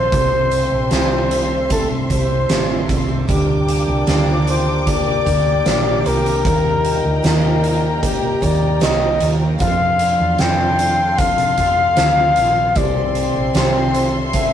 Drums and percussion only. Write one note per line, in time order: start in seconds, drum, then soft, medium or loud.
0.12 kick loud
0.12 closed hi-hat medium
0.51 closed hi-hat medium
0.91 snare medium
0.91 closed hi-hat medium
1.31 closed hi-hat medium
1.70 kick medium
1.70 closed hi-hat medium
2.10 kick medium
2.10 closed hi-hat medium
2.50 snare loud
2.50 closed hi-hat medium
2.89 kick medium
2.89 closed hi-hat medium
3.29 kick medium
3.29 closed hi-hat medium
3.68 closed hi-hat medium
4.07 snare medium
4.07 closed hi-hat medium
4.47 closed hi-hat medium
4.87 kick medium
4.87 closed hi-hat medium
5.26 kick medium
5.26 closed hi-hat medium
5.66 snare loud
5.66 closed hi-hat medium
6.06 closed hi-hat medium
6.26 closed hi-hat medium
6.45 kick loud
6.45 closed hi-hat medium
6.85 closed hi-hat medium
7.24 snare loud
7.24 closed hi-hat medium
7.64 closed hi-hat medium
8.03 kick medium
8.03 closed hi-hat loud
8.42 kick medium
8.42 closed hi-hat medium
8.81 snare loud
8.81 closed hi-hat medium
9.20 closed hi-hat medium
9.60 kick loud
9.60 closed hi-hat medium
9.99 closed hi-hat medium
10.38 snare medium
10.38 closed hi-hat medium
10.79 closed hi-hat medium
11.18 kick loud
11.18 closed hi-hat medium
11.38 closed hi-hat medium
11.58 kick medium
11.58 closed hi-hat medium
11.97 snare loud
11.97 closed hi-hat loud
12.36 closed hi-hat medium
12.76 kick loud
12.76 closed hi-hat medium
13.15 closed hi-hat medium
13.55 snare loud
13.55 closed hi-hat medium
13.94 closed hi-hat medium
14.33 kick medium
14.33 closed hi-hat loud